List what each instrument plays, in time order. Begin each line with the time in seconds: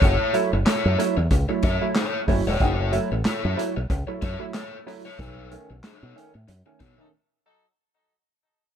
0.02 fingered electric bass F#1, overdriven electric guitar E4 A4 C#5, kick, closed hi-hat
0.33 tine electric piano F#3 A3 E4, closed hi-hat
0.52 fingered electric bass F#1, tine electric piano A3 E4, muted overdriven electric guitar stroke
0.66 overdriven electric guitar E4 A4 C#5, snare, clap, closed hi-hat
0.85 fingered electric bass F#2
0.98 tine electric piano F#3 A3 E4, muted overdriven electric guitar stroke, closed hi-hat
1.17 fingered electric bass E2, muted overdriven electric guitar stroke
1.31 fingered electric bass C#2, muted overdriven electric guitar stroke, kick, closed hi-hat
1.49 tine electric piano F#3 A3 E4, muted overdriven electric guitar stroke
1.63 fingered electric bass F#2, overdriven electric guitar E4 A4 C#5, kick, closed hi-hat
1.81 tine electric piano F#3 A3 E4, muted overdriven electric guitar stroke
1.95 overdriven electric guitar E4 A4 C#5, snare, clap, closed hi-hat
2.28 fingered electric bass F#1, tine electric piano F#3 A3 E4, muted overdriven electric guitar stroke, kick, open hi-hat
2.47 fingered electric bass E1, overdriven electric guitar E4 A4 C#5
2.60 fingered electric bass F#1, overdriven electric guitar D#4 G#4 C5, kick, closed hi-hat
2.74 overdriven electric guitar E4 A4 C#5
2.92 tine electric piano F#3 A3 E4, closed hi-hat
3.11 fingered electric bass A1, tine electric piano A3 E4, muted overdriven electric guitar stroke
3.25 overdriven electric guitar E4 A4 C#5, snare, clap, closed hi-hat
3.45 fingered electric bass F#2
3.57 tine electric piano F#3 A3 E4, muted overdriven electric guitar stroke, closed hi-hat
3.76 fingered electric bass B1, muted overdriven electric guitar stroke
3.90 fingered electric bass C#2, muted overdriven electric guitar stroke, kick, closed hi-hat
4.07 tine electric piano F#3 A3 E4, muted overdriven electric guitar stroke
4.22 fingered electric bass F#2, overdriven electric guitar E4 A4 C#5, kick, closed hi-hat
4.40 tine electric piano F#3 A3 E4, muted overdriven electric guitar stroke
4.54 overdriven electric guitar E4 A4 C#5, snare, clap, closed hi-hat
4.86 tine electric piano F#3 A3 E4, muted overdriven electric guitar stroke, open hi-hat
5.05 overdriven electric guitar E4 A4 C#5
5.19 fingered electric bass B1, tine electric piano B2, overdriven electric guitar D#4 A4 C#5, kick, closed hi-hat
5.51 tine electric piano D#3 A3 C#4, closed hi-hat
5.70 fingered electric bass B1, tine electric piano A3 C#4, muted overdriven electric guitar stroke
5.83 overdriven electric guitar D4 G#4 C5, snare, clap, closed hi-hat
5.95 overdriven electric guitar D#4 A4 C#5
6.03 fingered electric bass B2
6.16 tine electric piano D#3 A3 C#4, muted overdriven electric guitar stroke, closed hi-hat
6.34 fingered electric bass A2, muted overdriven electric guitar stroke
6.48 fingered electric bass F#2, muted overdriven electric guitar stroke, closed hi-hat
6.66 tine electric piano D#3 A3 C#4, muted overdriven electric guitar stroke
6.80 tine electric piano B2, fingered electric bass B2, overdriven electric guitar D#4 A4 C#5, kick, closed hi-hat
6.98 tine electric piano D#3 A3 C#4, horn section F#3 D#4 A4, muted overdriven electric guitar stroke
7.45 horn section F#3 D#4 A4